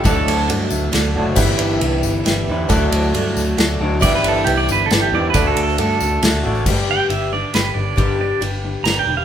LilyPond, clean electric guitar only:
\new Staff \with { instrumentName = "Clean electric guitar" } { \clef bass \time 3/4 \key g \major \tempo 4 = 136 <d fis a d' fis'>2~ <d fis a d' fis'>8 <d fis a d' fis'>8 | <g, d e g b e'>2~ <g, d e g b e'>8 <g, d e g b e'>8 | <d fis a d' fis'>2~ <d fis a d' fis'>8 <d fis a d' fis'>8 | <g, d e g b g'>2~ <g, d e g b g'>8 <g, d e g b g'>8 |
<d a d' fis'>2~ <d a d' fis'>8 <d a d' fis'>8 | <g, d g>8 <g, d>8 <g, d>8 <g, d>8 <g, d>8 <g, d>8 | <g, d g>8 <g, d>8 <g, d>8 <g, d>8 <g, d>8 <g, d>8 | }